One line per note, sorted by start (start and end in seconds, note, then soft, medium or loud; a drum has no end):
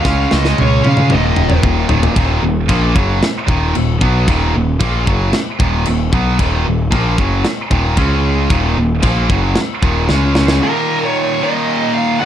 0.00 0.82 C#3 medium
0.00 0.34 F5 loud
0.05 0.26 C#2 medium
0.05 0.83 G#3 medium
0.05 0.82 C#4 medium
0.05 kick loud
0.05 snare medium
0.31 0.53 C#2 medium
0.31 0.60 D#5 medium
0.31 snare medium
0.45 snare medium
0.58 0.80 C#2 medium
0.58 0.84 C#5 medium
0.58 high tom medium
0.83 1.10 C#3 medium
0.83 1.14 C#3 loud
0.83 1.10 G#3 medium
0.83 1.09 C#4 medium
0.83 1.13 F5 medium
0.83 high tom medium
0.97 mid tom medium
1.08 1.87 D#2 medium
1.08 1.89 A#2 loud
1.08 1.60 D#5 medium
1.08 mid tom medium
1.12 1.33 D#1 medium
1.12 1.87 D#3 medium
1.36 1.58 D#1 medium
1.36 mid tom loud
1.50 mid tom medium
1.63 1.84 D#1 medium
1.63 kick medium
1.63 mid tom loud
1.88 2.10 D#1 medium
1.88 2.14 D#2 medium
1.88 2.15 A#2 medium
1.88 2.14 D#3 medium
1.88 floor tom loud
2.03 floor tom loud
2.15 2.41 D#1 medium
2.15 2.40 D#2 medium
2.15 2.41 A#2 medium
2.15 2.43 D#3 medium
2.15 kick loud
2.15 china medium
2.42 2.67 D#1 medium
2.42 2.64 D#2 medium
2.42 2.64 A#2 medium
2.68 2.94 A#1 medium
2.68 2.95 A#2 loud
2.68 2.95 F3 loud
2.68 2.95 A#3 medium
2.68 kick loud
2.68 china medium
2.95 3.20 F#1 loud
2.95 3.21 F#2 medium
2.95 3.21 C#3 medium
2.95 3.22 F#3 medium
2.95 kick loud
3.23 snare loud
3.23 china medium
3.47 3.73 D#1 medium
3.47 3.73 D#2 medium
3.47 3.74 A#2 medium
3.47 3.75 D#3 loud
3.47 kick loud
3.74 4.01 D#1 medium
3.74 3.96 D#2 medium
3.74 3.96 A#2 medium
3.74 china medium
4.01 4.26 B1 loud
4.01 4.27 B2 medium
4.01 4.27 F#3 loud
4.01 4.27 B3 medium
4.01 kick loud
4.28 4.53 D#1 medium
4.28 4.53 A#2 medium
4.28 4.54 D#3 loud
4.28 kick loud
4.28 china medium
4.55 4.80 D#1 medium
4.55 4.76 D#2 medium
4.55 4.76 A#2 medium
4.80 5.05 A#1 loud
4.80 5.07 A#2 medium
4.80 5.07 F3 medium
4.80 5.07 A#3 medium
4.80 kick loud
4.80 china medium
5.07 5.32 F#1 loud
5.07 5.33 F#2 medium
5.07 5.33 C#3 medium
5.07 5.33 F#3 medium
5.07 kick medium
5.33 snare loud
5.33 china medium
5.59 5.85 D#1 medium
5.59 5.85 D#2 medium
5.59 5.85 A#2 medium
5.59 5.86 D#3 medium
5.59 kick loud
5.85 6.12 D#1 medium
5.85 6.08 D#2 medium
5.85 6.08 A#2 medium
5.85 china medium
6.12 6.38 B1 medium
6.12 6.38 B2 medium
6.12 6.39 F#3 medium
6.12 6.39 B3 loud
6.12 kick loud
6.39 6.64 D#1 medium
6.39 6.64 D#2 medium
6.39 6.65 A#2 medium
6.39 6.65 D#3 medium
6.39 kick loud
6.39 china medium
6.65 6.92 D#1 medium
6.65 6.87 D#2 medium
6.65 6.87 A#2 medium
6.91 7.17 A#1 medium
6.91 7.17 A#2 medium
6.91 7.18 F3 medium
6.91 7.18 A#3 medium
6.91 kick loud
6.91 china medium
7.17 7.43 F#1 loud
7.17 7.44 F#2 medium
7.17 7.44 C#3 medium
7.17 7.45 F#3 medium
7.17 kick loud
7.44 snare loud
7.44 china medium
7.71 7.96 D#1 loud
7.71 7.97 D#2 medium
7.71 7.97 A#2 loud
7.71 7.98 D#3 loud
7.71 kick loud
7.97 8.47 C#2 medium
7.97 8.50 C#3 medium
7.97 8.50 G#3 medium
7.97 8.51 C#4 loud
7.97 kick loud
7.97 china medium
8.50 8.76 D#1 medium
8.50 8.76 D#2 medium
8.50 8.77 A#2 medium
8.50 8.77 D#3 medium
8.50 kick loud
8.50 china medium
8.77 9.02 D#1 medium
8.77 8.99 D#2 medium
8.77 8.99 A#2 medium
9.02 9.28 A#1 loud
9.02 9.29 A#2 medium
9.02 9.30 F3 medium
9.02 9.30 A#3 loud
9.02 kick loud
9.02 china medium
9.29 9.55 F#1 medium
9.29 9.55 F#2 medium
9.29 9.56 C#3 medium
9.29 9.57 F#3 medium
9.29 kick loud
9.55 snare loud
9.55 china medium
9.82 10.08 D#1 medium
9.82 10.09 D#2 medium
9.82 10.08 A#2 medium
9.82 10.09 D#3 medium
9.82 kick loud
10.08 10.59 C#2 medium
10.08 10.61 C#3 loud
10.08 10.62 G#3 loud
10.08 10.62 C#4 loud
10.08 snare medium
10.35 snare medium
10.48 snare loud
10.60 11.40 D#2 medium
10.60 11.41 A#2 medium
10.60 11.40 D#3 medium
10.60 11.04 A#4 medium
11.05 11.43 C#5 medium
11.41 12.19 D#2 medium
11.41 12.21 A#2 medium
11.41 12.20 D#3 medium
11.41 11.92 D#5 loud
11.94 12.19 F5 medium
12.19 12.25 D#2 medium
12.19 12.25 F#5 loud